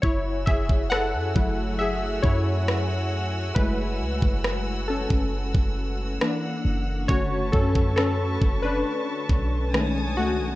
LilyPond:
<<
  \new Staff \with { instrumentName = "String section" } { \time 4/4 \key fis \minor \tempo 4 = 68 << { e'''1~ | e'''1 | r2. dis'''4 | } \\ { <fis' fis'' gis''>1~ | <fis' fis'' gis''>2. <ais fis''>4 | <b' a'' cis'''>2. <cis'' gis''>4 | } >> }
  \new Staff \with { instrumentName = "Synth keys" } { \time 4/4 \key fis \minor << { <e' cis''>8 <gis' e''>8 <a' fis''>4 <gis' e''>8 <e' cis''>4. | <e' b'>4. <cis' a'>2 r8 | <fis' cis''>8 <cis' a'>8 <cis' a'>8. <d' b'>4.~ <d' b'>16 <a fis'>8 | } \\ { r4. <fis a e'>4. r4 | <gis a e'>4. r4. <e ais d'>4 | <d a cis'>4. r4. <dis gis a cis'>4 | } >> }
  \new Staff \with { instrumentName = "808-style bass" } { \clef bass \time 4/4 \key fis \minor fis,,8 fis,,8. fis,16 fis,,4 fis,4. | fis,,8 cis,16 fis,,4 fis,,8 fis,,8. r8 fis,,8 | fis,,8 fis,4 fis,,8 r8 b,,4 cis,16 b,,16 | }
  \new DrumStaff \with { instrumentName = "Drums" } \drummode { \time 4/4 bd8 bd16 bd16 ss8 bd8 r8 bd8 ss4 | bd8. bd16 ss8. bd16 r16 bd8. ss4 | bd8 bd16 bd16 ss8 bd8 r8 bd8 ss4 | }
>>